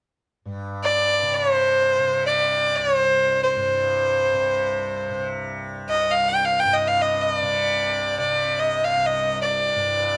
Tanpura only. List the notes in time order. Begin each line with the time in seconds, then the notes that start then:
0.45 G2
1.22 C3
1.99 C3
2.78 C2
3.56 G2
4.33 C3
5.10 C3
5.87 C2
6.65 G2
7.42 C3
8.19 C3
8.97 C2
9.75 G2